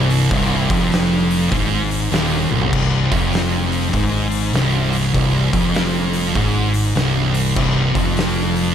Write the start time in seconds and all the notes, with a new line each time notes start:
Already playing: C1 C2
0.10 open hi-hat
0.31 C1 C2, kick, open hi-hat
0.70 F1 F2, kick, open hi-hat
0.92 snare, open hi-hat
1.30 open hi-hat
1.51 G#1 G#2, kick, open hi-hat
1.91 open hi-hat
2.12 D#1 D#2, snare, open hi-hat
2.50 C1 C2, high tom
2.61 floor tom
2.73 C1 C2, kick, crash
3.12 F1 F2, kick, open hi-hat
3.33 snare, open hi-hat
3.72 open hi-hat
3.93 G#1 G#2, kick, open hi-hat
4.32 open hi-hat
4.53 C1 C2, snare, open hi-hat
4.93 open hi-hat
5.14 C1 C2, kick, open hi-hat
5.53 F1 F2, kick, open hi-hat
5.74 snare, open hi-hat
6.13 open hi-hat
6.35 G#1 G#2, kick, open hi-hat
6.74 open hi-hat
6.95 C1 C2, snare, open hi-hat
7.34 open hi-hat
7.56 C1 C2, kick, crash
7.94 F1 F2, kick, open hi-hat
8.17 snare, open hi-hat
8.56 open hi-hat